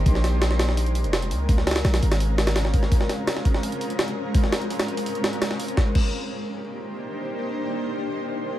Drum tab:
CC |--------------------------------|--------------------------------|--------------------------------|--------------------------------|
HH |o---o---o---o---o-x-o-x-o-x-o---|o---ooo-o-o-o-o-o---o-o-o---o---|o---o---o---o---o-x-o-x-o-x-----|o---o-x-o-o-x-o-o-x-o-x-o---o-x-|
SD |--o-o---o-o-o-o---------o-------|--o-ooo-o-o---o-----o-o-o-o---o-|--o-o---o-o---o---------o-------|--o-o-----o---------o---o-o-----|
BD |o-------------------------------|o---------------------------o---|o-----------o-------------------|o-------------------------------|

CC |----x---------------------------|--------------------------------|
HH |--------------------------------|--------------------------------|
SD |o-------------------------------|--------------------------------|
BD |o---o---------------------------|--------------------------------|